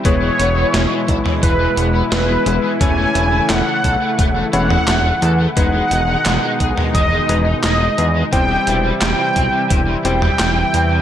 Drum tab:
HH |x-x-x-x-x-x-x-x-|x-x-x-x-x-x-x-x-|x-x-x-x-x-x-x-x-|x-x-x-x-x-x-x-x-|
CP |----------------|----x-------x---|----x-------x---|----x-------x---|
SD |----o-------o---|----o-------o---|----o-------o---|----o-------o---|
T2 |-------o--------|-----------o----|-------o--------|-----------o----|
BD |o-----o-o-------|o-----o-o-------|o-----o-o-------|o-----o-o-------|